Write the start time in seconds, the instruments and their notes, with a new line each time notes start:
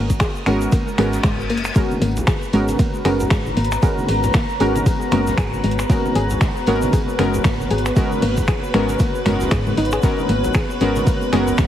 Already playing: fm bass G#1, synth stab G#3 B3 C#4 F#4 A#4, string machine D#6
0.10 kick, closed hi-hat, shaker
0.20 synth arpeggio sound G#4, finger snap, kick, snare, closed hi-hat, ride, tambourine, shaker
0.35 shaker
0.46 fm bass G#1, synth stab G#3 B3 C#4 F#4 A#4, synth arpeggio sound G#3, finger snap, open hi-hat, tambourine
0.61 closed hi-hat, shaker
0.72 synth arpeggio sound A#3, kick, closed hi-hat, ride, tambourine, reverse cymbal, shaker
0.88 shaker
0.98 fm bass G#1, synth stab G#3 B3 C#4 F#4 A#4, synth arpeggio sound G#4, finger snap, open hi-hat, tambourine
1.13 snare, closed hi-hat, shaker
1.23 fm bass G#1, synth arpeggio sound G#3, finger snap, kick, snare, closed hi-hat, ride, tambourine, shaker
1.40 shaker
1.50 fm bass F#1, synth arpeggio sound A#3, open hi-hat, tambourine
1.57 closed hi-hat
1.65 finger snap, closed hi-hat, shaker
1.75 synth stab G#3 B3 C#4 F#4 A#4, synth arpeggio sound G#3, ambient pad B3 F#4 C#5 A#5, string machine B4, kick, closed hi-hat, ride, tambourine, shaker
1.91 high conga, shaker
2.02 fm bass G#1, synth arpeggio sound A#3, open hi-hat, tambourine
2.17 closed hi-hat, low conga, shaker
2.27 synth arpeggio sound G#4, finger snap, kick, snare, closed hi-hat, ride, tambourine, high conga, shaker
2.42 shaker
2.53 fm bass G#1, synth stab G#3 B3 C#4 F#4 A#4, synth arpeggio sound G#3, open hi-hat, tambourine
2.68 snare, closed hi-hat, high conga, shaker
2.79 synth arpeggio sound A#3, kick, closed hi-hat, ride, tambourine, shaker
2.94 shaker
3.05 fm bass F#1, synth stab G#3 B3 C#4 F#4 A#4, synth arpeggio sound G#4, finger snap, open hi-hat, tambourine, high conga
3.20 closed hi-hat, low conga, shaker
3.30 fm bass G#1, synth arpeggio sound G#3, finger snap, kick, snare, closed hi-hat, ride, tambourine, shaker
3.46 high conga, shaker
3.57 fm bass G#1, synth arpeggio sound A#3, open hi-hat, tambourine
3.64 closed hi-hat
3.72 finger snap, snare, closed hi-hat, shaker
3.82 synth stab G#3 B3 C#4 F#4 A#4, synth arpeggio sound G#4, kick, closed hi-hat, ride, tambourine, shaker
3.98 high conga, shaker
4.08 fm bass G#1, synth arpeggio sound G#3, open hi-hat
4.23 closed hi-hat, low conga, shaker
4.34 synth arpeggio sound A#3, finger snap, kick, snare, closed hi-hat, ride, tambourine, high conga, shaker
4.49 shaker
4.60 fm bass G#1, synth stab G#3 B3 C#4 F#4 A#4, synth arpeggio sound G#4, open hi-hat, tambourine
4.76 closed hi-hat, high conga, shaker
4.86 synth arpeggio sound G#3, kick, closed hi-hat, ride, tambourine, shaker
5.01 shaker
5.11 fm bass F#1, synth stab G#3 B3 C#4 F#4 A#4, synth arpeggio sound A#3, finger snap, open hi-hat, tambourine, high conga
5.27 snare, closed hi-hat, low conga, shaker
5.37 fm bass G#1, synth arpeggio sound G#4, finger snap, kick, snare, closed hi-hat, ride, tambourine, shaker
5.53 high conga, shaker
5.64 fm bass G#1, synth arpeggio sound G#3, open hi-hat, tambourine
5.71 closed hi-hat
5.79 finger snap, closed hi-hat, shaker
5.89 synth stab G#3 B3 C#4 F#4 A#4, synth arpeggio sound A#3, kick, closed hi-hat, ride, tambourine, shaker
6.05 high conga, shaker
6.15 fm bass G#1, synth arpeggio sound G#4, open hi-hat, tambourine
6.30 closed hi-hat, low conga, shaker
6.40 synth arpeggio sound G#3, finger snap, kick, snare, closed hi-hat, ride, tambourine, high conga, shaker
6.56 shaker
6.66 fm bass G#1, synth stab G#3 B3 C#4 F#4 A#4, synth arpeggio sound A#3, open hi-hat, tambourine
6.82 snare, closed hi-hat, high conga, shaker
6.93 synth arpeggio sound G#4, kick, closed hi-hat, ride, tambourine, shaker
7.09 shaker
7.19 fm bass F#1, synth stab G#3 B3 C#4 F#4 A#4, synth arpeggio sound G#3, finger snap, open hi-hat, tambourine, high conga
7.34 closed hi-hat, low conga, shaker
7.44 fm bass G#1, synth arpeggio sound A#3, finger snap, kick, snare, closed hi-hat, ride, tambourine, shaker
7.60 high conga, shaker
7.70 fm bass G#1, synth arpeggio sound G#4, open hi-hat, tambourine
7.78 closed hi-hat
7.86 finger snap, snare, closed hi-hat, shaker
7.96 synth stab G#3 B3 C#4 F#4 A#4, synth arpeggio sound G#3, kick, closed hi-hat, ride, tambourine, shaker
8.12 high conga, shaker
8.22 fm bass G#1, synth arpeggio sound A#3, open hi-hat
8.37 kick, closed hi-hat, low conga, shaker
8.48 synth arpeggio sound G#4, finger snap, kick, snare, closed hi-hat, ride, tambourine, high conga, shaker
8.64 shaker
8.74 fm bass G#1, synth stab G#3 B3 C#4 F#4 A#4, synth arpeggio sound G#3, finger snap, open hi-hat, tambourine
8.89 closed hi-hat, high conga, shaker
8.99 synth arpeggio sound A#3, kick, closed hi-hat, ride, tambourine, shaker
9.15 shaker
9.25 fm bass F#1, synth arpeggio sound G#2, synth stab G#3 B3 C#4 F#4 A#4, finger snap, open hi-hat, tambourine, high conga
9.41 snare, closed hi-hat, low conga, shaker
9.51 fm bass G#2, synth arpeggio sound G#4, finger snap, kick, snare, closed hi-hat, ride, tambourine, shaker
9.66 synth arpeggio sound G#3, high conga, shaker
9.77 fm bass G#1, synth arpeggio sound D#4, open hi-hat, tambourine
9.85 closed hi-hat
9.91 synth arpeggio sound G#4, finger snap, closed hi-hat, shaker
10.03 synth stab G#3 B3 C#4 F#4 A#4, synth arpeggio sound G#3, kick, closed hi-hat, ride, tambourine, shaker
10.18 high conga, shaker
10.29 fm bass G#1, synth arpeggio sound A#3, open hi-hat, tambourine
10.44 closed hi-hat, low conga, shaker
10.54 synth arpeggio sound G#4, finger snap, kick, snare, closed hi-hat, ride, tambourine, high conga, shaker
10.70 shaker
10.80 fm bass G#1, synth stab G#3 B3 C#4 F#4 A#4, synth arpeggio sound G#3, open hi-hat, tambourine
10.96 snare, closed hi-hat, high conga, shaker
11.07 synth arpeggio sound A#3, kick, closed hi-hat, ride, tambourine, shaker
11.22 shaker
11.32 fm bass F#1, synth stab G#3 B3 C#4 F#4 A#4, synth arpeggio sound G#4, finger snap, open hi-hat, tambourine, high conga
11.48 closed hi-hat, low conga, shaker
11.58 fm bass G#1, synth arpeggio sound G#3, finger snap, kick, snare, closed hi-hat, ride, tambourine, shaker